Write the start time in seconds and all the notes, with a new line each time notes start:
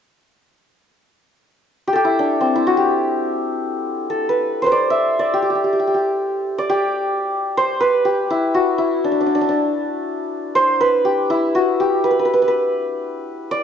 1.88 G4
1.93 G4 A4
2.05 E4
2.19 D4
2.41 C4
2.56 E4
2.67 F#4
2.77 G4
4.10 A4
4.29 B4
4.62 B4 C5
4.66 C5
4.72 D5
4.90 E5
5.19 D5
5.34 G4
5.42 G4
5.50 G4
5.55 G4
5.64 G4
5.73 G4
5.80 G4
5.87 G4
5.94 G4
6.58 D5
6.70 G4
7.57 C5
7.80 B4
8.05 G4
8.30 E4
8.54 F#4
8.78 E4
9.04 D4
9.12 D4
9.21 D4
9.26 D4
9.35 D4
9.41 D4
9.49 D4
10.55 C5
10.81 B4
11.05 G4
11.30 E4
11.55 F#4
11.80 G4
12.04 B4
12.11 B4
12.19 B4
12.25 B4
12.34 B4
12.42 B4
12.48 B4
13.51 D5